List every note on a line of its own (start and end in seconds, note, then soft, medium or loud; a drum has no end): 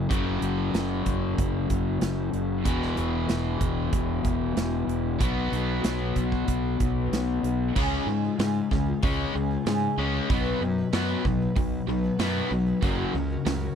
0.00 0.10 F#3 medium
0.09 0.38 F#1 medium
0.09 2.63 F#2 medium
0.09 2.65 C#3 medium
0.09 2.65 F#3 medium
0.09 kick medium
0.09 closed hi-hat medium
0.42 0.70 F#1 medium
0.42 closed hi-hat medium
0.73 1.02 F#1 medium
0.73 snare loud
0.73 closed hi-hat medium
1.06 1.34 F#1 medium
1.06 kick medium
1.06 closed hi-hat medium
1.38 1.66 F#1 medium
1.38 kick medium
1.38 closed hi-hat medium
1.70 1.98 F#1 medium
1.70 kick medium
1.70 closed hi-hat medium
2.01 2.30 F#1 medium
2.01 snare medium
2.01 closed hi-hat medium
2.33 2.66 F#1 medium
2.33 closed hi-hat soft
2.65 2.94 E1 medium
2.65 5.19 E2 medium
2.65 5.20 B2 medium
2.65 5.21 E3 medium
2.65 kick medium
2.65 closed hi-hat medium
2.82 snare soft
2.97 3.26 E1 medium
2.97 closed hi-hat medium
3.29 3.58 E1 medium
3.29 snare medium
3.29 closed hi-hat medium
3.60 3.89 E1 medium
3.60 kick medium
3.60 closed hi-hat medium
3.93 4.21 E1 medium
3.93 kick medium
3.93 closed hi-hat medium
4.24 4.53 E1 medium
4.24 kick medium
4.24 closed hi-hat medium
4.57 4.85 E1 medium
4.57 snare medium
4.57 closed hi-hat medium
4.87 5.16 E1 medium
4.87 closed hi-hat soft
5.21 5.49 B1 medium
5.21 7.74 B2 medium
5.21 7.75 F#3 medium
5.21 7.75 B3 medium
5.21 kick loud
5.21 closed hi-hat medium
5.52 5.80 B1 medium
5.52 closed hi-hat medium
5.84 6.13 B1 medium
5.84 snare medium
5.84 closed hi-hat medium
6.16 6.44 B1 medium
6.16 kick medium
6.16 closed hi-hat medium
6.32 kick medium
6.48 6.76 B1 medium
6.48 kick medium
6.48 closed hi-hat medium
6.80 7.08 B1 medium
6.80 kick medium
6.80 closed hi-hat medium
7.12 7.40 B1 medium
7.12 snare medium
7.12 closed hi-hat medium
7.43 7.72 B1 medium
7.43 closed hi-hat soft
7.75 7.97 C#2 medium
7.75 8.06 C#3 medium
7.75 8.08 C#3 medium
7.75 8.06 G#3 medium
7.75 8.07 G#3 medium
7.75 8.07 C#4 medium
7.75 8.08 C#4 medium
7.75 8.09 F4 medium
7.75 8.09 G#4 medium
7.75 kick loud
7.75 crash medium
8.06 8.28 G#2 medium
8.06 8.37 C#3 medium
8.06 8.24 G#3 medium
8.06 8.37 G#3 medium
8.06 8.25 C#4 medium
8.10 8.25 F4 medium
8.10 8.23 G#4 medium
8.24 8.41 C#4 soft
8.24 8.41 F4 soft
8.24 8.40 G#4 medium
8.39 8.60 G#2 medium
8.39 8.69 C#3 medium
8.39 8.56 C#3 medium
8.39 8.69 G#3 medium
8.39 8.56 G#3 medium
8.39 8.57 C#4 medium
8.39 8.56 F4 medium
8.39 8.55 G#4 medium
8.39 snare medium
8.39 open hi-hat soft
8.56 8.72 C#4 soft
8.56 8.72 F4 soft
8.56 8.72 G#4 soft
8.71 8.93 C#2 medium
8.71 9.00 C#3 medium
8.71 8.87 G#3 medium
8.71 9.00 G#3 medium
8.71 8.88 C#4 medium
8.71 8.87 F4 medium
8.71 8.85 G#4 medium
8.71 kick medium
8.71 snare soft
8.86 9.34 C#4 soft
8.86 9.35 F4 soft
8.86 9.34 G#4 medium
9.02 9.24 C#2 medium
9.02 9.33 C#3 medium
9.02 9.33 G#3 medium
9.02 9.34 C#4 medium
9.02 kick loud
9.02 open hi-hat soft
9.34 9.56 C#2 medium
9.34 9.64 C#3 medium
9.34 9.50 G#3 medium
9.34 9.64 G#3 medium
9.34 9.51 C#4 medium
9.34 9.51 F4 medium
9.34 9.50 G#4 medium
9.51 9.66 C#4 soft
9.51 9.66 F4 soft
9.51 9.67 G#4 soft
9.66 9.87 G#2 medium
9.66 9.98 C#3 medium
9.66 9.95 C#3 medium
9.66 9.96 G#3 medium
9.66 9.95 G#3 medium
9.66 9.98 C#4 medium
9.66 9.99 F4 medium
9.66 9.99 G#4 medium
9.66 snare loud
9.66 open hi-hat soft
9.97 10.19 C#2 medium
9.97 10.28 C#3 medium
9.97 10.14 G#3 medium
9.97 10.28 G#3 medium
9.97 10.15 C#4 medium
9.97 10.29 C#4 medium
9.97 10.15 F4 medium
9.97 10.13 G#4 medium
10.14 10.31 C#4 soft
10.14 10.31 F4 soft
10.14 10.30 G#4 soft
10.29 10.51 B1 medium
10.29 10.60 B2 medium
10.29 10.62 B2 medium
10.29 10.62 D#3 medium
10.29 10.60 F#3 medium
10.29 10.61 B3 medium
10.29 10.62 B3 medium
10.29 10.62 D#4 medium
10.29 10.63 B4 medium
10.29 kick loud
10.29 open hi-hat soft
10.61 10.82 F#2 medium
10.61 10.91 B2 medium
10.61 10.78 F#3 medium
10.61 10.91 F#3 medium
10.61 10.78 B3 medium
10.61 10.78 D#4 medium
10.61 10.77 B4 medium
10.78 10.94 F#3 soft
10.78 10.94 B3 soft
10.78 10.94 D#4 soft
10.78 10.94 B4 medium
10.93 11.14 F#2 medium
10.93 11.23 B2 medium
10.93 11.10 B2 medium
10.93 11.10 D#3 medium
10.93 11.24 F#3 medium
10.93 11.10 F#3 medium
10.93 11.24 B3 medium
10.93 11.10 B3 medium
10.93 11.09 D#4 medium
10.93 11.08 B4 medium
10.93 snare medium
10.93 open hi-hat medium
11.09 11.24 F#3 soft
11.09 11.26 B3 soft
11.09 11.26 D#4 medium
11.09 11.25 B4 medium
11.24 11.46 B1 medium
11.24 11.54 B2 medium
11.24 11.41 F#3 medium
11.24 11.54 F#3 medium
11.24 11.42 B3 medium
11.24 11.41 D#4 medium
11.24 kick medium
11.28 11.40 B4 medium
11.41 11.87 F#3 soft
11.41 11.88 B3 soft
11.41 11.89 D#4 medium
11.41 11.89 B4 medium
11.56 11.77 B1 medium
11.56 11.85 B2 medium
11.56 11.86 F#3 medium
11.56 kick loud
11.56 open hi-hat medium
11.87 12.08 B1 medium
11.87 12.17 B2 medium
11.87 12.04 F#3 medium
11.87 12.18 F#3 medium
11.87 12.05 B3 medium
11.87 12.04 D#4 medium
11.87 12.03 B4 medium
12.04 12.21 F#3 soft
12.04 12.21 B3 soft
12.04 12.20 D#4 soft
12.04 12.20 B4 medium
12.19 12.40 F#2 medium
12.19 12.50 B2 medium
12.19 12.52 B2 medium
12.19 12.52 D#3 medium
12.19 12.50 F#3 medium
12.19 12.50 B3 medium
12.19 snare loud
12.19 open hi-hat medium
12.23 12.51 B3 medium
12.23 12.52 D#4 medium
12.23 12.53 B4 medium
12.51 12.72 B1 medium
12.51 12.80 B2 medium
12.51 12.67 F#3 medium
12.51 12.81 F#3 medium
12.51 12.67 B3 medium
12.51 12.67 D#4 medium
12.51 12.65 B4 medium
12.66 12.82 F#3 soft
12.66 12.83 B3 soft
12.66 12.83 D#4 soft
12.66 12.83 B4 soft
12.82 13.04 F#1 medium
12.82 13.13 F#2 medium
12.82 13.14 C#3 medium
12.82 13.14 F#3 medium
12.82 13.15 C#4 medium
12.82 13.16 F#4 medium
12.82 13.16 A#4 medium
12.82 kick loud
12.82 open hi-hat medium
13.14 13.36 C#2 medium
13.14 13.44 F#2 medium
13.14 13.44 C#3 medium
13.14 13.31 F#3 medium
13.14 13.31 C#4 medium
13.14 13.31 F#4 medium
13.14 13.29 A#4 medium
13.30 13.46 C#4 soft
13.30 13.46 F#4 medium
13.30 13.46 A#4 medium
13.45 13.67 C#2 medium
13.45 13.75 F#2 medium
13.45 13.75 C#3 medium
13.45 13.62 F#3 medium
13.45 13.63 C#4 medium
13.45 13.63 F#4 medium
13.45 13.62 A#4 medium
13.45 snare loud
13.45 open hi-hat soft
13.63 13.75 C#4 soft
13.63 13.75 F#4 soft
13.63 13.75 A#4 medium